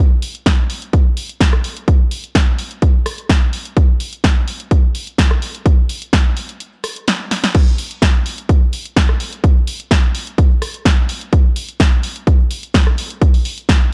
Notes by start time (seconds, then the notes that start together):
0.22 open hi-hat, shaker
0.35 closed hi-hat, shaker
0.46 kick, snare, closed hi-hat
0.70 open hi-hat
0.82 closed hi-hat
0.93 kick, closed hi-hat
1.17 open hi-hat, shaker
1.29 closed hi-hat, shaker
1.41 kick, snare, closed hi-hat
1.53 cross-stick
1.64 open hi-hat
1.77 closed hi-hat
1.88 kick, closed hi-hat
2.11 open hi-hat, shaker
2.23 closed hi-hat, shaker
2.35 kick, snare, closed hi-hat
2.59 open hi-hat
2.71 closed hi-hat
2.82 kick, closed hi-hat
3.06 cross-stick, open hi-hat
3.18 closed hi-hat
3.29 kick, snare, closed hi-hat
3.53 open hi-hat
3.65 closed hi-hat
3.77 kick, closed hi-hat
3.89 shaker
4.00 open hi-hat, shaker
4.13 closed hi-hat, shaker
4.24 kick, snare, closed hi-hat
4.48 open hi-hat
4.60 closed hi-hat
4.71 kick, closed hi-hat
4.84 shaker
4.95 open hi-hat, shaker
5.07 closed hi-hat, shaker
5.18 kick, snare, closed hi-hat
5.31 cross-stick
5.42 open hi-hat
5.54 closed hi-hat, shaker
5.66 kick, closed hi-hat
5.78 shaker
5.89 open hi-hat, shaker
6.02 closed hi-hat, shaker
6.13 kick, snare, closed hi-hat
6.36 open hi-hat, shaker
6.49 closed hi-hat
6.60 closed hi-hat
6.72 shaker
6.84 cross-stick, open hi-hat
6.96 closed hi-hat, shaker
7.08 snare, closed hi-hat
7.31 snare, open hi-hat
7.44 snare, closed hi-hat
7.55 kick, closed hi-hat, crash
7.78 open hi-hat, shaker
7.91 closed hi-hat
8.02 kick, snare, closed hi-hat
8.26 open hi-hat, shaker
8.38 closed hi-hat
8.49 kick, closed hi-hat
8.62 shaker
8.72 open hi-hat, shaker
8.85 closed hi-hat, shaker
8.96 kick, snare, closed hi-hat
9.09 cross-stick
9.20 open hi-hat, shaker
9.33 closed hi-hat, shaker
9.44 kick, closed hi-hat
9.57 shaker
9.67 open hi-hat, shaker
9.80 closed hi-hat, shaker
9.91 kick, snare, closed hi-hat
10.15 open hi-hat, shaker
10.27 closed hi-hat
10.38 kick, closed hi-hat
10.50 shaker
10.62 cross-stick, open hi-hat, shaker
10.74 closed hi-hat, shaker
10.85 kick, snare, closed hi-hat
10.98 shaker
11.09 open hi-hat, shaker
11.21 closed hi-hat, shaker
11.33 kick, closed hi-hat, shaker
11.44 shaker
11.56 open hi-hat, shaker
11.68 closed hi-hat, shaker
11.80 kick, snare, closed hi-hat
12.03 open hi-hat, shaker
12.16 closed hi-hat, shaker
12.27 kick, closed hi-hat, shaker
12.39 shaker
12.51 open hi-hat, shaker
12.63 closed hi-hat, shaker
12.74 kick, snare, closed hi-hat
12.87 cross-stick, shaker
12.98 open hi-hat, shaker
13.10 closed hi-hat, shaker
13.22 kick, closed hi-hat, shaker
13.34 open hi-hat, shaker
13.44 open hi-hat, shaker
13.58 closed hi-hat, shaker
13.69 kick, snare, closed hi-hat
13.81 shaker